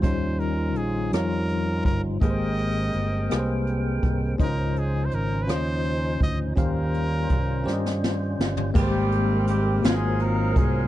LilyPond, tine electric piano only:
\new Staff \with { instrumentName = "Tine electric piano" } { \time 6/8 \key aes \major \tempo 4. = 55 <ees g des' ees' f'>4. <g ees' f' des''>4. | <aes bes g' aes' ces'' c''>4. <bes g' aes' ces'' c''>4. | <des des' ees' f' c'' ees''>4. <des' f' c'' des'' ees''>4. | <ees des' g' c'' f''>4. <des' g' c'' d'' ees''>4. |
<aes, aes bes g' ces'' c''>4. <aes, bes f' ges' c''>4. | }